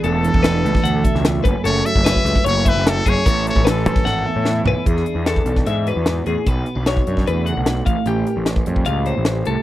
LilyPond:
<<
  \new Staff \with { instrumentName = "Trumpet" } { \time 4/4 \key a \major \tempo 4 = 150 a'2. r4 | cis''8 e''4. cis''8 b'8 a'8 cis''8~ | cis''8 cis''8 a'2~ a'8 r8 | r1 |
r1 | r1 | }
  \new Staff \with { instrumentName = "Clean electric guitar" } { \time 4/4 \key a \major a'4 b'4 fis''8 e''4 b'8 | a'4 b'4 cis''8 e''4 gis'8 | a'4 b'4 fis''8 e''4 b'8 | gis'4 a'4 e''8 b'4 gis'8 |
b'4 cis''4 b'8 fis''4 eis''8 | g'4 r4 eis''8 bis'4 a'8 | }
  \new Staff \with { instrumentName = "Clean electric guitar" } { \time 4/4 \key a \major << { <a d'>4 d'8 a2 cis'8 | a4 cis'8 a4 e'8 cis'8 cis'8 | b16 cis'16 a4 cis'8 a4 e'8 cis'8 | r8 d'8 a'8 d'4 fis'4. |
r8 b16 d'16 fis'8 d'8 a4. r8 | cis'8 bes'8 cis'8 g8 eis'8 cis'8 g4 | } \\ { e,8 e4. b,4 e,8 fis,8~ | fis,8 fis4. cis4. fis,8 | a,4 e4. e,4. | e,2. gis,8 a,8 |
b,2~ b,8 cis8 b,8 a,8~ | a,2.~ a,8 a,8 | } >> }
  \new Staff \with { instrumentName = "Picked electric bass" } { \clef bass \time 4/4 \key a \major e,,8. e,,8. cis,16 r16 d,8 r16 cis,8. fis,,16 r16 | fis,,8 r16 fis,,8 r16 cis,16 r16 fis,,8. fis,,8. fis,,16 r16 | a,,8. a,,8. fis,16 r16 gis,,8 r16 a,8. b,,16 r16 | e,8 r16 e,8. b,,8 gis,8. e,8. e,16 r16 |
b,,8 r16 b,,8. fis,8 e,8. b,,8. a,,16 r16 | a,,8 r16 a,,8. eis,8 cis,8. a,,8. bis,,16 r16 | }
  \new DrumStaff \with { instrumentName = "Drums" } \drummode { \time 4/4 hh8 hh16 bd16 <hh sn>16 sn16 hh16 <bd sn>16 hh8 <hh bd>16 sn16 <hh sn>8 <hh bd>8 | hh8 hh16 bd16 <hh sn>16 bd16 hh16 <bd sn>16 hh8 <hh bd>8 <hh sn>8 <hh bd>8 | <hh bd>8 <hh sn>16 bd16 <hh sn>16 sn16 hh16 <bd sn>16 sn4 sn8 tomfh8 | <hh bd>16 sn16 hh8 <hh sn>16 bd16 hh16 <bd sn>16 hh8 hh8 <hh sn>8 hh8 |
<hh bd>8 hh8 <hh sn>16 bd16 hh16 <bd sn>16 hh8 hh8 <hh sn>8 <hh bd>8 | hh8 hh8 <hh sn>16 bd16 hh16 bd16 hh8 hh8 <hh sn>8 hh8 | }
>>